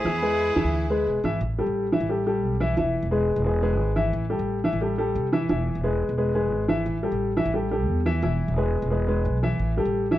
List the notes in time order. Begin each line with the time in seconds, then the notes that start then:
Already playing: E4 G#4
0.04 E2 E3 E4 E5
0.22 G#3 G#4 B4
0.56 E2 E3 E4 E5
0.64 D2
0.90 G#3 G#4 B4
1.07 E1
1.24 G#1 E3 E4 E5
1.41 A1
1.58 G3 G4 A4
1.66 A1
1.92 E3 E4 E5
2.00 A1
2.09 G3 G4 A4
2.26 G3 G4 A4
2.43 B1
2.60 E3 E4 E5
2.77 E1 E3 E4 E5
3.03 E1
3.11 G#3 G#4 B4
3.36 E1
3.45 G#3 G#4 B4
3.62 G#3 G#4 B4
3.79 G#1
3.96 E3 E4 E5
4.13 A1
4.30 G3 G4 A4
4.39 A1
4.64 E3 E4 E5
4.73 A1
4.81 G3 G4 A4
4.98 G3 G4 A4
5.15 F1
5.32 E3 E4 E5
5.49 E1 E3 E4 E5
5.75 E1
5.83 G#3 G#4 B4
6.09 E1
6.18 G#3 G#4 B4
6.35 G#3 G#4 B4
6.52 G#1
6.68 E3 E4 E5
6.86 A1
7.03 G3 G4 A4
7.12 A1
7.37 E3 E4 E5
7.45 A1
7.54 G3 G4 A4
7.71 G3 G4 A4
7.88 E2
8.06 E3 E4 E5
8.22 E1 E3 E4 E5
8.48 E1
8.57 G#3 G#4 B4
8.82 E1
8.91 G#3 G#4 B4
9.08 G#3 G#4 B4
9.25 B1
9.43 E3 E4 E5
9.59 A1
9.77 G3 G4 A4
9.85 A1
10.11 E3 E4 E5